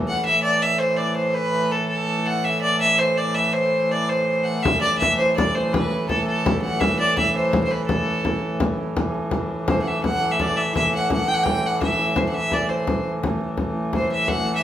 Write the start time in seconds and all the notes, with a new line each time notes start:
Already playing: A2 E3
0.08 F#5, frame drum
0.25 A2 E3 E5
0.43 D5
0.62 E5
0.79 C5
0.96 D5
1.16 C5
1.34 B4
1.71 A4
1.88 A4
2.26 F#5
2.44 E5
2.61 D5
2.81 E5
2.98 C5
3.18 D5
3.35 E5
3.53 C5
3.91 D5
4.09 C5
4.44 F#5
4.62 A2 E3 E5, frame drum
4.81 D5, frame drum
4.98 E5
5.02 frame drum
5.18 C5, frame drum
5.36 D5, frame drum
5.55 C5
5.73 B4, frame drum
5.92 frame drum
6.09 A4, frame drum
6.27 A4, frame drum
6.46 frame drum
6.62 F#5, frame drum
6.80 E5, frame drum
6.99 D5, frame drum
7.17 E5, frame drum
7.36 C5, frame drum
7.53 frame drum
7.64 C5
7.71 B4, frame drum
7.86 A4, frame drum
8.25 frame drum
8.60 frame drum
8.78 frame drum
8.97 A2 E3, frame drum
9.15 frame drum
9.31 frame drum
9.68 C5, frame drum
9.82 F#5
9.87 E5
10.03 F#5, frame drum
10.23 frame drum
10.31 E5
10.39 D5, frame drum
10.57 E5
10.75 E5, frame drum
10.95 F#5
11.10 F#5, frame drum
11.28 G5, frame drum
11.34 F#5
11.43 G5, frame drum
11.66 F#5
11.81 E5, frame drum
12.16 C5, frame drum
12.29 F#5
12.34 E5
12.51 D5, frame drum
12.69 C5, frame drum
12.87 frame drum
13.22 A2 E3, frame drum
13.41 frame drum
13.57 frame drum
13.93 C5, frame drum
14.11 E5
14.28 F#5, frame drum
14.45 frame drum
14.55 E5